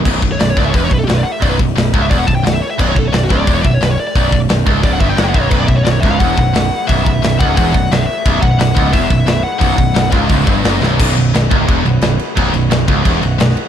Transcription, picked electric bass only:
X:1
M:4/4
L:1/8
Q:1/4=175
K:Bm
V:1 name="Picked electric bass" clef=bass
B,,,, B,,,, B,,,, C,,, E,,, B,,,, B,,,, z | B,,,, B,,,, B,,,, C,,, E,,, B,,,, B,,,, z | B,,,, B,,,, B,,,, C,,, E,,, B,,,, B,,,, z | B,,,, B,,,, B,,,, C,,, C,,, G,,, F,,, B,,,, |
B,,,, B,,,, B,,,, C,,, E,,, B,,,, B,,,, z | B,,,, B,,,, B,,,, C,,, E,,, B,,,, B,,,, z | B,,,, B,,,, B,,,, C,,, E,,, B,,,, B,,,, z | B,,,, B,,,, B,,,, C,,, C,,, G,,, F,,, B,,,, |
B,,,, B,,,, B,,,, C,,, E,,, B,,,, B,,,, z | B,,,, B,,,, B,,,, C,,, E,,, B,,,, B,,,, z |]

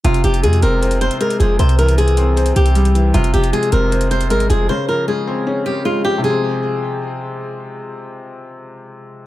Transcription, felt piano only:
X:1
M:4/4
L:1/8
Q:1/4=155
K:Fm
V:1 name="Felt piano" clef=bass
C, F, A, C c2 A, F, | C, =E,2 C c2 G, E, | C, F, A, C c2 A, F, | D, F, A, C D2 A, F, |
[C,F,A,C]8- | [C,F,A,C]8 |]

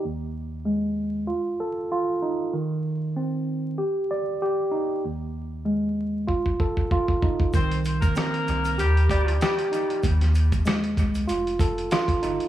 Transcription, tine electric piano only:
X:1
M:4/4
L:1/8
Q:"Swing 16ths" 1/4=96
K:Cm
V:1 name="Tine electric piano"
E,,2 A,2 F =A F E | E,2 C2 G d G E | E,,2 A,2 F =A F E | E,2 C2 G d G E |
E,,2 A,2 F =A F E |]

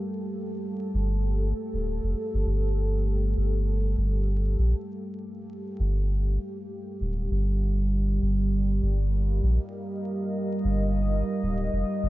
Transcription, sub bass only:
X:1
M:4/4
L:1/16
Q:"Swing 16ths" 1/4=99
K:Gm
V:1 name="Sub bass" clef=bass
z6 G,,,4 z D,,,2 F,,, z G,,, | G,,,6 G,,,4 G,,,4 B,,, z | z6 G,,,4 z4 D,,,2 | G,,,6 G,,,4 G,,,4 B,,, z |
z6 G,,,4 z D,,,2 F,,, z G,,, |]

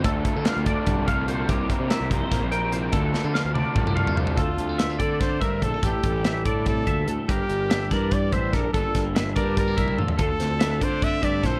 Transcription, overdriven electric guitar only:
X:1
M:7/8
L:1/8
Q:1/4=145
K:Dm
V:1 name="Overdriven electric guitar"
[D,A,DFA] [DFA] [D,A,DFA] [DFA]2 [DFA] [A,DFA] | [C,E,G,CEB] [G,CEB] [C,E,G,CEB] [G,CEB]2 [G,CEB] [G,CEB] | [D,A,DFA] [DFA] [D,A,DFA] [DFA]2 [DFA] [A,DFA] | z6 z |
z6 z | z6 z | z6 z | z6 z |]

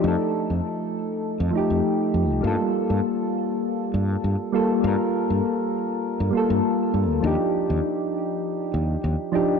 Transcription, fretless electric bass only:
X:1
M:4/4
L:1/16
Q:"Swing 16ths" 1/4=100
K:Gm
V:1 name="Fretless electric bass" clef=bass
F,, z2 F,, z4 z F,, z F,, z2 F,, C,, | G,, z2 G,, z6 G,, z G,, z3 | G,, z2 G,, z4 z G,, z G,, z2 G,, D,, | E,, z2 E,, z6 E,, z E,, z3 |]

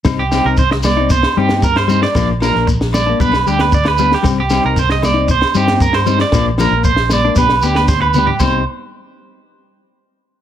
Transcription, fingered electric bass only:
X:1
M:4/4
L:1/16
Q:1/4=115
K:Cm
V:1 name="Fingered electric bass" clef=bass
C,,3 C,,6- C,, G,,6 | B,,,3 B,,,4- B,,, =B,,,2 D,,6 | C,,3 C,,6- C,, G,,6 | B,,,3 B,,,4- B,,, =B,,,2 D,,6 |
C,,2 z12 z2 |]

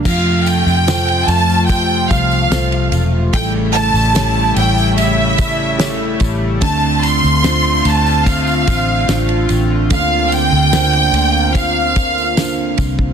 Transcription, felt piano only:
X:1
M:4/4
L:1/8
Q:1/4=73
K:F
V:1 name="Felt piano"
F,2 [FAc]2 z2 [FAc]2 | A,2 [GA^c]2 z2 [GAc]2 | D,2 [DFc]2 z2 [DFc]2 | D,2 [DBc]2 z2 [DBc]2 |]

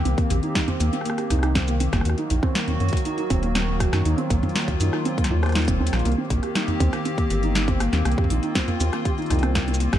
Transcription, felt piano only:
X:1
M:4/4
L:1/16
Q:1/4=120
K:Eblyd
V:1 name="Felt piano"
C B, G E E C B, C B, G E E C B, C B, | _G E E C B, C B, G E E C B, C B, G E | E C B, C B, _G E E C B, F c E C C B, | B, C B, G E E C B, C B, G E E C B, C |
B, G E E C B, C B, G E E C B, C B, G |]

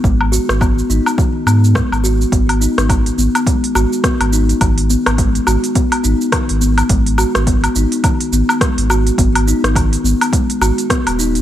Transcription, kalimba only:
X:1
M:4/4
L:1/16
Q:"Swing 16ths" 1/4=105
K:G#m
V:1 name="Kalimba"
G,2 F z B, z D2 D,2 B,2 G,2 F z | B, z D2 D,2 B,2 G,2 F z B, z D2 | D,2 B,2 G,2 F z B, z D2 D,2 B,2 | G,2 F z B, z D2 D,2 B,2 G,2 F z |
B, z D2 D,2 B,2 G,2 F z B, z D2 |]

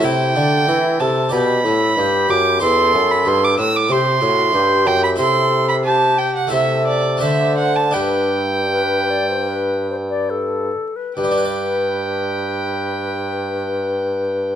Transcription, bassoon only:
X:1
M:4/4
L:1/8
Q:1/4=88
K:G
V:1 name="Bassoon" clef=bass
C, D, E, C, B,, A,, G,, F,, | E,, F,, G,, A,, C, A,, G,, F,, | C,4 C,2 D,2 | G,,6- G,, z |
G,,8 |]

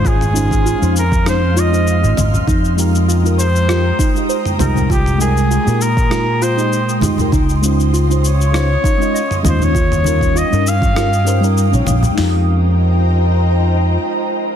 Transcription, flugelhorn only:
X:1
M:4/4
L:1/16
Q:"Swing 16ths" 1/4=99
K:Fm
V:1 name="Flugelhorn"
A6 B2 c2 e4 z2 | z6 c6 z2 B2 | G2 A4 B4 c4 z2 | z6 d8 c d- |
d4 e2 f6 z4 | z16 |]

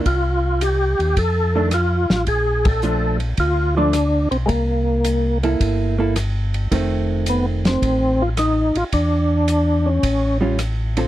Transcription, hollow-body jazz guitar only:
X:1
M:4/4
L:1/8
Q:"Swing" 1/4=108
K:Fmix
V:1 name="Hollow-body jazz guitar"
z4 z [E,A,D] z2 | z2 [F,A,D] z2 [F,A,D] z2 | z3 [B,=EA]2 [B,EA] z2 | [E,A,C]4- [E,A,C] z3 |
z4 z [G,^CF] z [D,=CFA] |]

